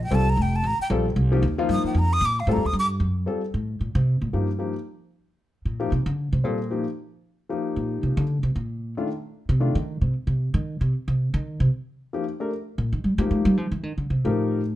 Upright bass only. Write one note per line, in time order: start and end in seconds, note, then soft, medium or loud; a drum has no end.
0.00 0.11 A#1 loud
0.11 0.37 C2 loud
0.37 0.63 F1 medium
0.64 0.78 A1 medium
0.79 muted upright bass stroke soft
0.90 1.16 A#1 loud
1.16 1.42 C2 medium
1.43 1.68 D#2 loud
1.69 1.83 G2 medium
1.84 muted upright bass stroke soft
1.94 2.20 F2 medium
2.21 2.46 A#2 loud
2.47 2.58 A2 loud
2.56 2.64 F2 medium
2.65 2.73 D#2 medium
2.73 2.99 G2 medium
3.00 3.26 F#2 medium
3.54 3.78 A2 medium
3.81 3.94 A#2 medium
3.95 4.19 C3 loud
4.22 4.32 A#2 medium
4.33 4.71 G2 medium
5.65 5.89 A#2 medium
5.92 6.05 C3 medium
6.06 6.30 D3 medium
6.33 6.44 C3 medium
6.44 6.85 A#2 medium
7.76 8.00 A#2 medium
8.03 8.16 C3 medium
8.17 8.41 D3 loud
8.43 8.54 C3 medium
8.55 8.94 A#2 medium
9.49 9.73 C3 medium
9.75 10.00 D#3 medium
10.01 10.12 C3 medium
10.27 10.52 C3 medium
10.54 10.79 D#3 loud
10.81 10.92 C3 medium
11.08 11.32 C3 medium
11.34 11.58 D#3 loud
11.60 11.67 C3 medium
12.78 12.92 A#2 medium
12.93 13.03 D#3 medium
13.04 13.18 G3 medium
13.18 13.29 A#3 loud
13.31 13.45 A3 medium
13.45 13.57 G3 loud
13.57 13.71 F3 medium
13.71 13.83 E3 medium
13.83 13.97 D#3 medium
13.98 14.09 D3 medium
14.10 14.24 C3 medium
14.25 14.76 A2 medium